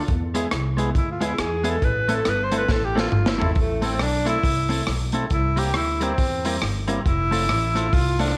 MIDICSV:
0, 0, Header, 1, 6, 480
1, 0, Start_track
1, 0, Key_signature, 0, "minor"
1, 0, Tempo, 436047
1, 89, Time_signature, 4, 2, 24, 8
1, 9217, End_track
2, 0, Start_track
2, 0, Title_t, "Tenor saxophone"
2, 0, Program_c, 0, 66
2, 1068, Note_on_c, 0, 64, 87
2, 1208, Note_off_c, 0, 64, 0
2, 1225, Note_on_c, 0, 65, 80
2, 1386, Note_on_c, 0, 64, 88
2, 1402, Note_off_c, 0, 65, 0
2, 1541, Note_on_c, 0, 68, 96
2, 1558, Note_off_c, 0, 64, 0
2, 1861, Note_on_c, 0, 69, 93
2, 1877, Note_off_c, 0, 68, 0
2, 2028, Note_on_c, 0, 71, 109
2, 2045, Note_off_c, 0, 69, 0
2, 2364, Note_on_c, 0, 69, 103
2, 2381, Note_off_c, 0, 71, 0
2, 2522, Note_on_c, 0, 71, 111
2, 2539, Note_off_c, 0, 69, 0
2, 2682, Note_on_c, 0, 72, 105
2, 2698, Note_off_c, 0, 71, 0
2, 2824, Note_off_c, 0, 72, 0
2, 2841, Note_on_c, 0, 71, 107
2, 2990, Note_on_c, 0, 69, 101
2, 3007, Note_off_c, 0, 71, 0
2, 3136, Note_on_c, 0, 67, 96
2, 3152, Note_off_c, 0, 69, 0
2, 3303, Note_on_c, 0, 65, 95
2, 3319, Note_off_c, 0, 67, 0
2, 3629, Note_on_c, 0, 64, 82
2, 3646, Note_off_c, 0, 65, 0
2, 3938, Note_off_c, 0, 64, 0
2, 3965, Note_on_c, 0, 57, 90
2, 4243, Note_on_c, 0, 60, 95
2, 4260, Note_off_c, 0, 57, 0
2, 4435, Note_on_c, 0, 62, 97
2, 4452, Note_off_c, 0, 60, 0
2, 4712, Note_off_c, 0, 62, 0
2, 4719, Note_on_c, 0, 64, 117
2, 5334, Note_off_c, 0, 64, 0
2, 5868, Note_on_c, 0, 64, 99
2, 6151, Note_on_c, 0, 67, 111
2, 6168, Note_off_c, 0, 64, 0
2, 6335, Note_off_c, 0, 67, 0
2, 6343, Note_on_c, 0, 64, 100
2, 6635, Note_on_c, 0, 60, 101
2, 6652, Note_off_c, 0, 64, 0
2, 7297, Note_off_c, 0, 60, 0
2, 7778, Note_on_c, 0, 64, 108
2, 8738, Note_on_c, 0, 65, 106
2, 8755, Note_off_c, 0, 64, 0
2, 9026, Note_on_c, 0, 62, 107
2, 9043, Note_off_c, 0, 65, 0
2, 9214, Note_off_c, 0, 62, 0
2, 9217, End_track
3, 0, Start_track
3, 0, Title_t, "Tonewheel organ"
3, 0, Program_c, 1, 16
3, 379, Note_on_c, 1, 56, 91
3, 383, Note_on_c, 1, 59, 87
3, 391, Note_on_c, 1, 64, 88
3, 394, Note_on_c, 1, 68, 103
3, 509, Note_off_c, 1, 56, 0
3, 512, Note_off_c, 1, 59, 0
3, 515, Note_off_c, 1, 64, 0
3, 517, Note_off_c, 1, 68, 0
3, 569, Note_on_c, 1, 68, 46
3, 572, Note_on_c, 1, 64, 40
3, 627, Note_off_c, 1, 68, 0
3, 628, Note_off_c, 1, 64, 0
3, 857, Note_on_c, 1, 56, 92
3, 858, Note_on_c, 1, 59, 87
3, 864, Note_on_c, 1, 64, 88
3, 868, Note_on_c, 1, 68, 109
3, 988, Note_off_c, 1, 56, 0
3, 989, Note_off_c, 1, 59, 0
3, 992, Note_off_c, 1, 64, 0
3, 994, Note_off_c, 1, 68, 0
3, 1333, Note_on_c, 1, 56, 87
3, 1339, Note_on_c, 1, 59, 88
3, 1343, Note_on_c, 1, 64, 84
3, 1348, Note_on_c, 1, 68, 101
3, 1466, Note_off_c, 1, 56, 0
3, 1469, Note_off_c, 1, 59, 0
3, 1471, Note_off_c, 1, 64, 0
3, 1474, Note_off_c, 1, 68, 0
3, 1808, Note_on_c, 1, 56, 98
3, 1812, Note_on_c, 1, 59, 88
3, 1819, Note_on_c, 1, 64, 86
3, 1822, Note_on_c, 1, 68, 94
3, 1943, Note_off_c, 1, 56, 0
3, 1945, Note_off_c, 1, 59, 0
3, 1949, Note_off_c, 1, 64, 0
3, 1950, Note_off_c, 1, 68, 0
3, 2288, Note_on_c, 1, 57, 97
3, 2290, Note_on_c, 1, 60, 91
3, 2295, Note_on_c, 1, 64, 89
3, 2298, Note_on_c, 1, 69, 110
3, 2423, Note_off_c, 1, 57, 0
3, 2424, Note_off_c, 1, 60, 0
3, 2427, Note_off_c, 1, 64, 0
3, 2428, Note_off_c, 1, 69, 0
3, 2485, Note_on_c, 1, 69, 44
3, 2486, Note_on_c, 1, 64, 45
3, 2544, Note_off_c, 1, 69, 0
3, 2545, Note_off_c, 1, 64, 0
3, 2770, Note_on_c, 1, 57, 102
3, 2775, Note_on_c, 1, 60, 89
3, 2777, Note_on_c, 1, 64, 90
3, 2781, Note_on_c, 1, 69, 107
3, 2904, Note_off_c, 1, 57, 0
3, 2906, Note_off_c, 1, 60, 0
3, 2908, Note_off_c, 1, 64, 0
3, 2910, Note_off_c, 1, 69, 0
3, 3251, Note_on_c, 1, 57, 92
3, 3253, Note_on_c, 1, 60, 82
3, 3259, Note_on_c, 1, 64, 78
3, 3264, Note_on_c, 1, 69, 104
3, 3384, Note_off_c, 1, 57, 0
3, 3386, Note_off_c, 1, 60, 0
3, 3388, Note_off_c, 1, 64, 0
3, 3391, Note_off_c, 1, 69, 0
3, 3730, Note_on_c, 1, 57, 95
3, 3731, Note_on_c, 1, 60, 80
3, 3738, Note_on_c, 1, 64, 88
3, 3744, Note_on_c, 1, 69, 110
3, 3864, Note_off_c, 1, 57, 0
3, 3864, Note_off_c, 1, 60, 0
3, 3868, Note_off_c, 1, 64, 0
3, 3871, Note_off_c, 1, 69, 0
3, 4203, Note_on_c, 1, 57, 98
3, 4207, Note_on_c, 1, 60, 85
3, 4214, Note_on_c, 1, 64, 83
3, 4218, Note_on_c, 1, 69, 108
3, 4341, Note_off_c, 1, 57, 0
3, 4343, Note_off_c, 1, 60, 0
3, 4346, Note_off_c, 1, 64, 0
3, 4348, Note_off_c, 1, 69, 0
3, 4404, Note_on_c, 1, 69, 46
3, 4405, Note_on_c, 1, 64, 42
3, 4464, Note_off_c, 1, 69, 0
3, 4465, Note_off_c, 1, 64, 0
3, 4689, Note_on_c, 1, 57, 92
3, 4696, Note_on_c, 1, 60, 86
3, 4698, Note_on_c, 1, 64, 92
3, 4702, Note_on_c, 1, 69, 111
3, 4824, Note_off_c, 1, 57, 0
3, 4827, Note_off_c, 1, 60, 0
3, 4828, Note_off_c, 1, 64, 0
3, 4830, Note_off_c, 1, 69, 0
3, 5167, Note_on_c, 1, 57, 89
3, 5173, Note_on_c, 1, 60, 75
3, 5179, Note_on_c, 1, 64, 84
3, 5183, Note_on_c, 1, 69, 94
3, 5303, Note_off_c, 1, 57, 0
3, 5306, Note_off_c, 1, 60, 0
3, 5309, Note_off_c, 1, 64, 0
3, 5311, Note_off_c, 1, 69, 0
3, 5656, Note_on_c, 1, 57, 89
3, 5658, Note_on_c, 1, 60, 79
3, 5664, Note_on_c, 1, 64, 82
3, 5665, Note_on_c, 1, 69, 104
3, 5787, Note_off_c, 1, 57, 0
3, 5788, Note_off_c, 1, 60, 0
3, 5792, Note_off_c, 1, 64, 0
3, 5792, Note_off_c, 1, 69, 0
3, 6135, Note_on_c, 1, 58, 103
3, 6141, Note_on_c, 1, 60, 90
3, 6145, Note_on_c, 1, 64, 90
3, 6146, Note_on_c, 1, 67, 107
3, 6268, Note_off_c, 1, 58, 0
3, 6271, Note_off_c, 1, 60, 0
3, 6272, Note_off_c, 1, 64, 0
3, 6273, Note_off_c, 1, 67, 0
3, 6333, Note_on_c, 1, 67, 48
3, 6334, Note_on_c, 1, 64, 43
3, 6389, Note_off_c, 1, 67, 0
3, 6390, Note_off_c, 1, 64, 0
3, 6612, Note_on_c, 1, 58, 91
3, 6618, Note_on_c, 1, 60, 86
3, 6618, Note_on_c, 1, 64, 86
3, 6623, Note_on_c, 1, 67, 106
3, 6746, Note_off_c, 1, 58, 0
3, 6749, Note_off_c, 1, 60, 0
3, 6749, Note_off_c, 1, 64, 0
3, 6752, Note_off_c, 1, 67, 0
3, 7096, Note_on_c, 1, 58, 90
3, 7098, Note_on_c, 1, 60, 81
3, 7105, Note_on_c, 1, 64, 83
3, 7107, Note_on_c, 1, 67, 94
3, 7228, Note_off_c, 1, 58, 0
3, 7230, Note_off_c, 1, 60, 0
3, 7233, Note_off_c, 1, 64, 0
3, 7234, Note_off_c, 1, 67, 0
3, 7574, Note_on_c, 1, 58, 89
3, 7578, Note_on_c, 1, 60, 79
3, 7582, Note_on_c, 1, 64, 85
3, 7586, Note_on_c, 1, 67, 99
3, 7708, Note_off_c, 1, 58, 0
3, 7710, Note_off_c, 1, 60, 0
3, 7712, Note_off_c, 1, 64, 0
3, 7714, Note_off_c, 1, 67, 0
3, 8046, Note_on_c, 1, 57, 94
3, 8053, Note_on_c, 1, 60, 86
3, 8056, Note_on_c, 1, 65, 93
3, 8063, Note_on_c, 1, 69, 102
3, 8184, Note_off_c, 1, 57, 0
3, 8188, Note_off_c, 1, 60, 0
3, 8189, Note_off_c, 1, 65, 0
3, 8192, Note_off_c, 1, 69, 0
3, 8255, Note_on_c, 1, 69, 44
3, 8257, Note_on_c, 1, 65, 43
3, 8311, Note_off_c, 1, 69, 0
3, 8312, Note_off_c, 1, 65, 0
3, 8537, Note_on_c, 1, 57, 94
3, 8541, Note_on_c, 1, 60, 85
3, 8546, Note_on_c, 1, 65, 90
3, 8552, Note_on_c, 1, 69, 107
3, 8670, Note_off_c, 1, 57, 0
3, 8672, Note_off_c, 1, 60, 0
3, 8675, Note_off_c, 1, 65, 0
3, 8678, Note_off_c, 1, 69, 0
3, 9015, Note_on_c, 1, 57, 89
3, 9021, Note_on_c, 1, 60, 82
3, 9024, Note_on_c, 1, 65, 79
3, 9027, Note_on_c, 1, 69, 97
3, 9149, Note_off_c, 1, 57, 0
3, 9152, Note_off_c, 1, 60, 0
3, 9154, Note_off_c, 1, 65, 0
3, 9155, Note_off_c, 1, 69, 0
3, 9217, End_track
4, 0, Start_track
4, 0, Title_t, "Clean electric guitar"
4, 0, Program_c, 2, 27
4, 378, Note_on_c, 2, 56, 84
4, 387, Note_on_c, 2, 59, 88
4, 390, Note_on_c, 2, 64, 87
4, 397, Note_on_c, 2, 68, 105
4, 517, Note_off_c, 2, 56, 0
4, 522, Note_off_c, 2, 59, 0
4, 523, Note_off_c, 2, 64, 0
4, 527, Note_off_c, 2, 68, 0
4, 848, Note_on_c, 2, 56, 89
4, 858, Note_on_c, 2, 59, 84
4, 865, Note_on_c, 2, 64, 89
4, 873, Note_on_c, 2, 68, 96
4, 992, Note_off_c, 2, 56, 0
4, 997, Note_off_c, 2, 59, 0
4, 1000, Note_off_c, 2, 64, 0
4, 1004, Note_off_c, 2, 68, 0
4, 1327, Note_on_c, 2, 56, 88
4, 1331, Note_on_c, 2, 59, 82
4, 1343, Note_on_c, 2, 64, 94
4, 1350, Note_on_c, 2, 68, 99
4, 1471, Note_off_c, 2, 56, 0
4, 1473, Note_off_c, 2, 59, 0
4, 1479, Note_off_c, 2, 64, 0
4, 1483, Note_off_c, 2, 68, 0
4, 1802, Note_on_c, 2, 56, 91
4, 1807, Note_on_c, 2, 59, 86
4, 1812, Note_on_c, 2, 64, 96
4, 1816, Note_on_c, 2, 68, 98
4, 1949, Note_off_c, 2, 56, 0
4, 1951, Note_off_c, 2, 59, 0
4, 1954, Note_off_c, 2, 64, 0
4, 1956, Note_off_c, 2, 68, 0
4, 2295, Note_on_c, 2, 57, 86
4, 2301, Note_on_c, 2, 60, 84
4, 2308, Note_on_c, 2, 64, 88
4, 2310, Note_on_c, 2, 69, 91
4, 2435, Note_off_c, 2, 57, 0
4, 2438, Note_off_c, 2, 60, 0
4, 2442, Note_off_c, 2, 64, 0
4, 2443, Note_off_c, 2, 69, 0
4, 2772, Note_on_c, 2, 57, 97
4, 2772, Note_on_c, 2, 60, 100
4, 2780, Note_on_c, 2, 64, 104
4, 2785, Note_on_c, 2, 69, 94
4, 2913, Note_off_c, 2, 57, 0
4, 2913, Note_off_c, 2, 60, 0
4, 2917, Note_off_c, 2, 64, 0
4, 2920, Note_off_c, 2, 69, 0
4, 3251, Note_on_c, 2, 57, 96
4, 3255, Note_on_c, 2, 60, 102
4, 3265, Note_on_c, 2, 64, 98
4, 3265, Note_on_c, 2, 69, 112
4, 3393, Note_off_c, 2, 57, 0
4, 3395, Note_off_c, 2, 60, 0
4, 3400, Note_off_c, 2, 64, 0
4, 3400, Note_off_c, 2, 69, 0
4, 3723, Note_on_c, 2, 57, 89
4, 3728, Note_on_c, 2, 60, 88
4, 3736, Note_on_c, 2, 64, 83
4, 3741, Note_on_c, 2, 69, 92
4, 3869, Note_off_c, 2, 57, 0
4, 3871, Note_off_c, 2, 60, 0
4, 3875, Note_off_c, 2, 64, 0
4, 3878, Note_off_c, 2, 69, 0
4, 4203, Note_on_c, 2, 57, 95
4, 4210, Note_on_c, 2, 60, 87
4, 4220, Note_on_c, 2, 64, 88
4, 4223, Note_on_c, 2, 69, 93
4, 4349, Note_off_c, 2, 57, 0
4, 4352, Note_off_c, 2, 60, 0
4, 4358, Note_off_c, 2, 64, 0
4, 4359, Note_off_c, 2, 69, 0
4, 4683, Note_on_c, 2, 57, 89
4, 4692, Note_on_c, 2, 60, 99
4, 4695, Note_on_c, 2, 64, 91
4, 4697, Note_on_c, 2, 69, 94
4, 4829, Note_off_c, 2, 57, 0
4, 4833, Note_off_c, 2, 60, 0
4, 4835, Note_off_c, 2, 64, 0
4, 4836, Note_off_c, 2, 69, 0
4, 5163, Note_on_c, 2, 57, 100
4, 5165, Note_on_c, 2, 60, 87
4, 5175, Note_on_c, 2, 64, 97
4, 5182, Note_on_c, 2, 69, 101
4, 5309, Note_off_c, 2, 57, 0
4, 5310, Note_off_c, 2, 60, 0
4, 5315, Note_off_c, 2, 64, 0
4, 5319, Note_off_c, 2, 69, 0
4, 5646, Note_on_c, 2, 57, 80
4, 5652, Note_on_c, 2, 60, 83
4, 5662, Note_on_c, 2, 64, 84
4, 5666, Note_on_c, 2, 69, 93
4, 5791, Note_off_c, 2, 57, 0
4, 5794, Note_off_c, 2, 60, 0
4, 5799, Note_off_c, 2, 64, 0
4, 5801, Note_off_c, 2, 69, 0
4, 6123, Note_on_c, 2, 55, 89
4, 6130, Note_on_c, 2, 60, 81
4, 6134, Note_on_c, 2, 64, 89
4, 6140, Note_on_c, 2, 70, 88
4, 6270, Note_off_c, 2, 55, 0
4, 6273, Note_off_c, 2, 60, 0
4, 6275, Note_off_c, 2, 64, 0
4, 6278, Note_off_c, 2, 70, 0
4, 6610, Note_on_c, 2, 55, 87
4, 6619, Note_on_c, 2, 60, 88
4, 6626, Note_on_c, 2, 64, 97
4, 6629, Note_on_c, 2, 70, 94
4, 6753, Note_off_c, 2, 55, 0
4, 6758, Note_off_c, 2, 60, 0
4, 6762, Note_off_c, 2, 64, 0
4, 6763, Note_off_c, 2, 70, 0
4, 7103, Note_on_c, 2, 55, 81
4, 7107, Note_on_c, 2, 60, 91
4, 7111, Note_on_c, 2, 64, 99
4, 7121, Note_on_c, 2, 70, 99
4, 7240, Note_off_c, 2, 55, 0
4, 7242, Note_off_c, 2, 60, 0
4, 7244, Note_off_c, 2, 64, 0
4, 7249, Note_off_c, 2, 70, 0
4, 7568, Note_on_c, 2, 55, 84
4, 7572, Note_on_c, 2, 60, 100
4, 7577, Note_on_c, 2, 64, 97
4, 7583, Note_on_c, 2, 70, 97
4, 7713, Note_off_c, 2, 55, 0
4, 7715, Note_off_c, 2, 60, 0
4, 7718, Note_off_c, 2, 64, 0
4, 7721, Note_off_c, 2, 70, 0
4, 8049, Note_on_c, 2, 57, 90
4, 8057, Note_on_c, 2, 60, 90
4, 8062, Note_on_c, 2, 65, 88
4, 8067, Note_on_c, 2, 69, 101
4, 8194, Note_off_c, 2, 57, 0
4, 8198, Note_off_c, 2, 60, 0
4, 8200, Note_off_c, 2, 65, 0
4, 8203, Note_off_c, 2, 69, 0
4, 8533, Note_on_c, 2, 57, 88
4, 8537, Note_on_c, 2, 60, 84
4, 8544, Note_on_c, 2, 65, 90
4, 8547, Note_on_c, 2, 69, 90
4, 8676, Note_off_c, 2, 57, 0
4, 8678, Note_off_c, 2, 60, 0
4, 8682, Note_off_c, 2, 65, 0
4, 8683, Note_off_c, 2, 69, 0
4, 9021, Note_on_c, 2, 57, 94
4, 9025, Note_on_c, 2, 60, 93
4, 9031, Note_on_c, 2, 65, 95
4, 9040, Note_on_c, 2, 69, 93
4, 9160, Note_off_c, 2, 57, 0
4, 9163, Note_off_c, 2, 60, 0
4, 9165, Note_off_c, 2, 65, 0
4, 9170, Note_off_c, 2, 69, 0
4, 9217, End_track
5, 0, Start_track
5, 0, Title_t, "Upright bass"
5, 0, Program_c, 3, 32
5, 95, Note_on_c, 3, 40, 99
5, 500, Note_off_c, 3, 40, 0
5, 576, Note_on_c, 3, 36, 93
5, 981, Note_off_c, 3, 36, 0
5, 1045, Note_on_c, 3, 38, 90
5, 1454, Note_off_c, 3, 38, 0
5, 1529, Note_on_c, 3, 40, 100
5, 1936, Note_off_c, 3, 40, 0
5, 2007, Note_on_c, 3, 33, 98
5, 2415, Note_off_c, 3, 33, 0
5, 2486, Note_on_c, 3, 31, 95
5, 2895, Note_off_c, 3, 31, 0
5, 2955, Note_on_c, 3, 33, 92
5, 3368, Note_off_c, 3, 33, 0
5, 3441, Note_on_c, 3, 31, 96
5, 3851, Note_off_c, 3, 31, 0
5, 3919, Note_on_c, 3, 33, 100
5, 4405, Note_off_c, 3, 33, 0
5, 4405, Note_on_c, 3, 35, 84
5, 4814, Note_off_c, 3, 35, 0
5, 4882, Note_on_c, 3, 36, 85
5, 5293, Note_off_c, 3, 36, 0
5, 5362, Note_on_c, 3, 35, 90
5, 5773, Note_off_c, 3, 35, 0
5, 5841, Note_on_c, 3, 36, 94
5, 6323, Note_off_c, 3, 36, 0
5, 6323, Note_on_c, 3, 38, 86
5, 6734, Note_off_c, 3, 38, 0
5, 6804, Note_on_c, 3, 40, 95
5, 7215, Note_off_c, 3, 40, 0
5, 7288, Note_on_c, 3, 31, 96
5, 7697, Note_off_c, 3, 31, 0
5, 7768, Note_on_c, 3, 29, 98
5, 8252, Note_off_c, 3, 29, 0
5, 8252, Note_on_c, 3, 33, 93
5, 8660, Note_off_c, 3, 33, 0
5, 8729, Note_on_c, 3, 36, 98
5, 9139, Note_off_c, 3, 36, 0
5, 9217, End_track
6, 0, Start_track
6, 0, Title_t, "Drums"
6, 89, Note_on_c, 9, 42, 75
6, 93, Note_on_c, 9, 36, 101
6, 199, Note_off_c, 9, 42, 0
6, 203, Note_off_c, 9, 36, 0
6, 382, Note_on_c, 9, 42, 85
6, 492, Note_off_c, 9, 42, 0
6, 565, Note_on_c, 9, 37, 112
6, 569, Note_on_c, 9, 42, 84
6, 675, Note_off_c, 9, 37, 0
6, 679, Note_off_c, 9, 42, 0
6, 862, Note_on_c, 9, 42, 78
6, 972, Note_off_c, 9, 42, 0
6, 1046, Note_on_c, 9, 36, 108
6, 1053, Note_on_c, 9, 42, 66
6, 1156, Note_off_c, 9, 36, 0
6, 1163, Note_off_c, 9, 42, 0
6, 1337, Note_on_c, 9, 42, 96
6, 1447, Note_off_c, 9, 42, 0
6, 1523, Note_on_c, 9, 42, 68
6, 1525, Note_on_c, 9, 37, 125
6, 1633, Note_off_c, 9, 42, 0
6, 1635, Note_off_c, 9, 37, 0
6, 1809, Note_on_c, 9, 42, 94
6, 1919, Note_off_c, 9, 42, 0
6, 2005, Note_on_c, 9, 36, 98
6, 2007, Note_on_c, 9, 42, 76
6, 2115, Note_off_c, 9, 36, 0
6, 2117, Note_off_c, 9, 42, 0
6, 2298, Note_on_c, 9, 42, 86
6, 2408, Note_off_c, 9, 42, 0
6, 2480, Note_on_c, 9, 37, 107
6, 2483, Note_on_c, 9, 42, 88
6, 2590, Note_off_c, 9, 37, 0
6, 2593, Note_off_c, 9, 42, 0
6, 2770, Note_on_c, 9, 42, 82
6, 2880, Note_off_c, 9, 42, 0
6, 2956, Note_on_c, 9, 38, 61
6, 2959, Note_on_c, 9, 36, 102
6, 3066, Note_off_c, 9, 38, 0
6, 3069, Note_off_c, 9, 36, 0
6, 3277, Note_on_c, 9, 38, 81
6, 3387, Note_off_c, 9, 38, 0
6, 3434, Note_on_c, 9, 45, 77
6, 3544, Note_off_c, 9, 45, 0
6, 3590, Note_on_c, 9, 38, 107
6, 3700, Note_off_c, 9, 38, 0
6, 3760, Note_on_c, 9, 43, 100
6, 3870, Note_off_c, 9, 43, 0
6, 3911, Note_on_c, 9, 46, 71
6, 3918, Note_on_c, 9, 36, 100
6, 4021, Note_off_c, 9, 46, 0
6, 4028, Note_off_c, 9, 36, 0
6, 4204, Note_on_c, 9, 44, 72
6, 4206, Note_on_c, 9, 46, 84
6, 4314, Note_off_c, 9, 44, 0
6, 4316, Note_off_c, 9, 46, 0
6, 4397, Note_on_c, 9, 37, 112
6, 4398, Note_on_c, 9, 44, 66
6, 4400, Note_on_c, 9, 46, 82
6, 4507, Note_off_c, 9, 37, 0
6, 4508, Note_off_c, 9, 44, 0
6, 4510, Note_off_c, 9, 46, 0
6, 4692, Note_on_c, 9, 44, 63
6, 4692, Note_on_c, 9, 46, 75
6, 4802, Note_off_c, 9, 46, 0
6, 4803, Note_off_c, 9, 44, 0
6, 4882, Note_on_c, 9, 36, 100
6, 4885, Note_on_c, 9, 44, 62
6, 4894, Note_on_c, 9, 46, 65
6, 4992, Note_off_c, 9, 36, 0
6, 4995, Note_off_c, 9, 44, 0
6, 5004, Note_off_c, 9, 46, 0
6, 5170, Note_on_c, 9, 44, 66
6, 5172, Note_on_c, 9, 46, 92
6, 5280, Note_off_c, 9, 44, 0
6, 5283, Note_off_c, 9, 46, 0
6, 5357, Note_on_c, 9, 44, 66
6, 5357, Note_on_c, 9, 46, 67
6, 5359, Note_on_c, 9, 37, 117
6, 5467, Note_off_c, 9, 44, 0
6, 5467, Note_off_c, 9, 46, 0
6, 5469, Note_off_c, 9, 37, 0
6, 5639, Note_on_c, 9, 46, 85
6, 5647, Note_on_c, 9, 44, 68
6, 5749, Note_off_c, 9, 46, 0
6, 5758, Note_off_c, 9, 44, 0
6, 5835, Note_on_c, 9, 46, 76
6, 5836, Note_on_c, 9, 44, 61
6, 5841, Note_on_c, 9, 36, 98
6, 5945, Note_off_c, 9, 46, 0
6, 5946, Note_off_c, 9, 44, 0
6, 5951, Note_off_c, 9, 36, 0
6, 6129, Note_on_c, 9, 44, 70
6, 6131, Note_on_c, 9, 46, 81
6, 6239, Note_off_c, 9, 44, 0
6, 6241, Note_off_c, 9, 46, 0
6, 6318, Note_on_c, 9, 37, 111
6, 6319, Note_on_c, 9, 44, 68
6, 6321, Note_on_c, 9, 46, 86
6, 6428, Note_off_c, 9, 37, 0
6, 6429, Note_off_c, 9, 44, 0
6, 6431, Note_off_c, 9, 46, 0
6, 6615, Note_on_c, 9, 44, 61
6, 6615, Note_on_c, 9, 46, 84
6, 6725, Note_off_c, 9, 44, 0
6, 6725, Note_off_c, 9, 46, 0
6, 6800, Note_on_c, 9, 44, 65
6, 6804, Note_on_c, 9, 36, 104
6, 6809, Note_on_c, 9, 46, 64
6, 6910, Note_off_c, 9, 44, 0
6, 6914, Note_off_c, 9, 36, 0
6, 6919, Note_off_c, 9, 46, 0
6, 7095, Note_on_c, 9, 44, 72
6, 7097, Note_on_c, 9, 46, 99
6, 7205, Note_off_c, 9, 44, 0
6, 7207, Note_off_c, 9, 46, 0
6, 7282, Note_on_c, 9, 44, 63
6, 7283, Note_on_c, 9, 46, 63
6, 7284, Note_on_c, 9, 37, 117
6, 7393, Note_off_c, 9, 44, 0
6, 7393, Note_off_c, 9, 46, 0
6, 7395, Note_off_c, 9, 37, 0
6, 7570, Note_on_c, 9, 46, 96
6, 7579, Note_on_c, 9, 44, 70
6, 7680, Note_off_c, 9, 46, 0
6, 7689, Note_off_c, 9, 44, 0
6, 7768, Note_on_c, 9, 36, 102
6, 7770, Note_on_c, 9, 46, 77
6, 7771, Note_on_c, 9, 44, 66
6, 7878, Note_off_c, 9, 36, 0
6, 7880, Note_off_c, 9, 46, 0
6, 7881, Note_off_c, 9, 44, 0
6, 8061, Note_on_c, 9, 44, 69
6, 8063, Note_on_c, 9, 46, 82
6, 8171, Note_off_c, 9, 44, 0
6, 8173, Note_off_c, 9, 46, 0
6, 8247, Note_on_c, 9, 37, 115
6, 8248, Note_on_c, 9, 44, 66
6, 8250, Note_on_c, 9, 46, 85
6, 8357, Note_off_c, 9, 37, 0
6, 8358, Note_off_c, 9, 44, 0
6, 8361, Note_off_c, 9, 46, 0
6, 8539, Note_on_c, 9, 44, 64
6, 8539, Note_on_c, 9, 46, 79
6, 8649, Note_off_c, 9, 44, 0
6, 8649, Note_off_c, 9, 46, 0
6, 8726, Note_on_c, 9, 44, 66
6, 8728, Note_on_c, 9, 36, 105
6, 8735, Note_on_c, 9, 46, 66
6, 8836, Note_off_c, 9, 44, 0
6, 8838, Note_off_c, 9, 36, 0
6, 8845, Note_off_c, 9, 46, 0
6, 9015, Note_on_c, 9, 44, 70
6, 9018, Note_on_c, 9, 46, 98
6, 9114, Note_on_c, 9, 37, 59
6, 9125, Note_off_c, 9, 44, 0
6, 9128, Note_off_c, 9, 46, 0
6, 9217, Note_off_c, 9, 37, 0
6, 9217, End_track
0, 0, End_of_file